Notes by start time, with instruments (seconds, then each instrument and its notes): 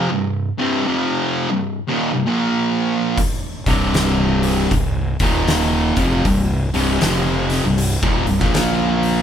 0.09 distorted electric guitar C2 G2
0.58 distorted electric guitar C2 G2 C3
0.86 distorted electric guitar F2 C3 F3
1.49 distorted electric guitar C2 G2
1.87 distorted electric guitar D#2 A#2
2.13 distorted electric guitar C2 G2
2.26 distorted electric guitar A#2 F3 A#3
3.17 kick, open hi-hat
3.66 fingered electric bass C1, distorted electric guitar C2 G2 C3, kick, open hi-hat
3.94 snare, open hi-hat
4.43 open hi-hat
4.71 fingered electric bass C1, distorted electric guitar C2 G2, kick, open hi-hat
5.20 fingered electric bass D#1, distorted electric guitar D#2 A#2 D#3, kick, open hi-hat
5.48 snare, open hi-hat
5.96 fingered electric bass F1, distorted electric guitar F2 C3 F3, kick, open hi-hat
6.25 fingered electric bass C1, distorted electric guitar C2 G2, kick, open hi-hat
6.74 fingered electric bass C1, distorted electric guitar C2 G2 C3, open hi-hat
7.01 fingered electric bass F1, distorted electric guitar F2 C3 F3, snare, open hi-hat
7.50 snare, open hi-hat
7.64 fingered electric bass C1, distorted electric guitar C2 G2
7.78 open hi-hat
8.02 fingered electric bass D#1, distorted electric guitar D#2 A#2, kick
8.26 fingered electric bass C1, distorted electric guitar C2 G2, open hi-hat
8.41 fingered electric bass A#1, distorted electric guitar A#2 F3 A#3, kick
8.54 snare, open hi-hat
9.03 open hi-hat